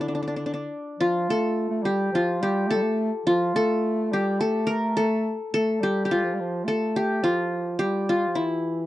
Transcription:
0.00 0.71 D3 medium
0.00 0.08 D4 medium
0.00 0.68 E4 medium
0.08 0.14 D4 soft
0.15 0.22 D4 soft
0.23 0.27 D4 soft
0.28 0.36 D4 soft
0.36 0.46 D4 soft
0.46 0.53 D4 medium
0.54 2.03 D4 soft
0.99 1.30 F3 medium
0.99 2.15 F4 medium
1.29 1.69 A3 medium
1.29 2.47 A4 medium
1.70 1.84 A3 medium
1.83 2.11 G3 medium
1.83 2.42 G4 medium
2.12 2.42 F3 medium
2.12 3.26 F4 medium
2.40 2.69 G3 medium
2.40 3.68 G4 medium
2.67 2.77 A3 medium
2.67 3.55 A4 loud
2.75 2.84 G3 medium
2.82 3.11 A3 medium
3.26 3.55 F3 medium
3.26 4.61 F4 medium
3.54 4.13 A3 medium
3.54 4.40 A4 loud
4.12 4.42 G3 medium
4.12 5.39 G4 medium
4.40 4.96 A3 medium
4.40 4.73 A4 medium
4.67 5.03 A#4 medium
4.97 5.36 A3 medium
4.97 5.53 A4 loud
5.53 5.82 A3 medium
5.53 6.67 A4 loud
5.81 6.12 G3 medium
5.81 6.05 G4 medium
6.05 6.96 G4 medium
6.10 6.16 F3 medium
6.10 7.23 F4 medium
6.15 6.25 G3 medium
6.23 6.35 F3 medium
6.33 6.42 G3 medium
6.40 6.66 F3 medium
6.64 7.24 A3 medium
6.64 7.85 A4 medium
6.96 7.79 G4 medium
7.22 7.78 F3 medium
7.22 8.09 F4 medium
7.79 8.29 G3 medium
7.79 8.86 G4 medium
8.09 8.41 F4 medium
8.27 8.38 F3 soft
8.35 8.86 E3 medium
8.35 8.86 E4 medium

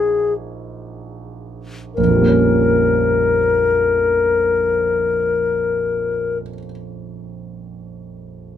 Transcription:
0.00 1.93 D#4 soft
0.00 1.94 F#4 soft
0.00 0.34 G#4 soft
0.00 1.94 G#4 soft
0.00 1.94 A#4 soft
1.95 6.41 A#1 soft
1.95 6.38 A#4 soft
2.04 6.47 F2 soft
2.10 6.53 F3 soft
2.16 6.59 G3 soft
2.22 6.65 A#3 soft
2.28 6.72 C#4 soft

